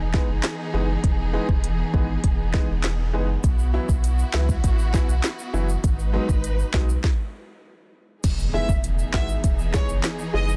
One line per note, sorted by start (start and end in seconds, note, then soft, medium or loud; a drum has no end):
0.00 0.18 E1 medium
0.00 3.40 E3 medium
0.00 5.80 B3 medium
0.00 3.40 D#4 medium
0.00 3.40 G#4 medium
0.14 0.26 E3 medium
0.14 0.26 G#3 medium
0.14 0.26 B3 medium
0.14 0.26 D#4 loud
0.14 kick medium
0.14 snare medium
0.29 0.40 F#1 medium
0.43 cross-stick loud
0.43 snare loud
0.43 clap medium
0.43 closed hi-hat medium
0.74 0.97 F#1 medium
0.74 0.86 E3 medium
0.74 0.86 G#3 medium
0.74 0.86 B3 medium
0.74 0.86 D#4 medium
1.04 1.38 E1 loud
1.04 kick loud
1.04 closed hi-hat medium
1.33 1.46 E3 medium
1.33 1.46 G#3 medium
1.33 1.46 B3 medium
1.33 1.46 D#4 loud
1.49 1.83 E1 loud
1.49 kick medium
1.64 closed hi-hat medium
1.94 2.17 G#1 loud
1.94 2.06 E3 medium
1.94 2.06 G#3 medium
1.94 2.06 B3 medium
1.94 2.06 D#4 medium
1.94 kick loud
2.24 2.58 E1 loud
2.24 kick medium
2.24 closed hi-hat medium
2.54 2.66 E3 medium
2.54 2.66 G#3 medium
2.54 2.66 B3 medium
2.54 2.66 D#4 loud
2.54 kick loud
2.54 snare medium
2.69 3.15 E1 medium
2.84 cross-stick loud
2.84 snare loud
2.84 clap medium
2.84 closed hi-hat medium
3.13 3.37 F#1 loud
3.13 3.26 E3 medium
3.13 3.26 G#3 medium
3.13 3.26 B3 medium
3.13 3.26 D#4 loud
3.44 3.78 B1 loud
3.44 5.81 E4 medium
3.44 7.00 F#4 medium
3.44 kick loud
3.44 closed hi-hat medium
3.44 shaker medium
3.59 shaker medium
3.74 3.86 E3 medium
3.74 3.86 F#3 medium
3.74 3.86 B3 medium
3.74 3.86 E4 loud
3.89 4.23 B1 loud
3.89 kick medium
3.89 shaker medium
4.04 closed hi-hat medium
4.04 shaker medium
4.19 shaker medium
4.33 4.57 C#2 loud
4.33 4.46 E3 medium
4.33 4.46 F#3 medium
4.33 4.46 B3 medium
4.33 4.46 E4 loud
4.33 snare loud
4.33 clap medium
4.49 kick medium
4.49 shaker medium
4.64 4.98 A1 loud
4.64 kick medium
4.64 closed hi-hat medium
4.64 shaker medium
4.79 shaker medium
4.93 5.06 E3 medium
4.93 5.06 F#3 medium
4.93 5.06 B3 medium
4.93 5.06 E4 loud
4.93 kick loud
4.93 snare medium
4.93 shaker medium
5.09 5.20 B1 medium
5.09 shaker medium
5.24 cross-stick medium
5.24 snare loud
5.24 clap medium
5.24 closed hi-hat medium
5.24 shaker medium
5.39 shaker medium
5.53 5.77 F#1 medium
5.53 5.66 E3 medium
5.53 5.66 F#3 medium
5.53 5.66 B3 medium
5.53 5.66 E4 loud
5.53 shaker medium
5.69 shaker medium
5.84 6.18 G#1 loud
5.84 7.03 G#3 medium
5.84 7.03 D#4 medium
5.84 7.03 B4 medium
5.84 kick loud
5.84 closed hi-hat medium
5.84 shaker medium
5.99 shaker medium
6.13 6.25 F#3 medium
6.13 6.25 G#3 medium
6.13 6.26 B3 medium
6.13 6.26 D#4 loud
6.29 6.63 G#1 loud
6.29 kick medium
6.29 shaker medium
6.44 closed hi-hat medium
6.44 shaker medium
6.59 shaker medium
6.74 6.97 B1 loud
6.74 6.86 F#3 medium
6.74 6.86 G#3 medium
6.74 6.86 B3 medium
6.74 6.86 D#4 loud
6.74 kick loud
6.74 snare loud
6.74 clap medium
6.89 shaker medium
7.04 kick loud
7.04 snare medium
8.24 8.58 E1 loud
8.24 10.57 E3 medium
8.24 10.57 B3 medium
8.24 10.57 D#4 medium
8.24 10.57 G#4 medium
8.24 kick loud
8.24 closed hi-hat medium
8.24 crash loud
8.24 impact medium
8.24 shaker medium
8.39 shaker medium
8.54 8.66 G#3 medium
8.54 8.66 B3 medium
8.54 8.66 D#4 medium
8.54 8.66 E4 medium
8.54 8.66 G#4 medium
8.54 8.64 E5 medium
8.69 9.03 E1 loud
8.69 kick medium
8.69 shaker medium
8.84 closed hi-hat medium
8.84 shaker medium
8.99 shaker medium
9.13 9.37 G#1 loud
9.13 9.26 G#3 medium
9.13 9.26 B3 medium
9.13 9.26 D#4 medium
9.13 9.26 E4 medium
9.13 9.26 F#4 medium
9.13 9.24 E5 medium
9.13 kick loud
9.13 snare loud
9.13 clap medium
9.29 shaker medium
9.44 9.78 E1 medium
9.44 kick medium
9.44 closed hi-hat medium
9.44 shaker medium
9.59 shaker medium
9.73 9.86 G#3 medium
9.73 9.86 B3 medium
9.73 9.86 D#4 medium
9.73 9.86 E4 medium
9.73 9.86 G#4 medium
9.73 9.84 C#5 medium
9.73 kick loud
9.73 snare medium
9.73 shaker medium
9.89 10.00 F#1 medium
9.89 shaker medium
10.04 cross-stick loud
10.04 snare loud
10.04 clap loud
10.04 closed hi-hat medium
10.04 shaker medium
10.19 shaker medium
10.33 10.57 F#1 loud
10.33 10.46 G#3 medium
10.33 10.46 B3 medium
10.33 10.46 D#4 medium
10.33 10.46 E4 medium
10.33 10.46 G#4 medium
10.33 10.44 D#5 medium
10.49 shaker medium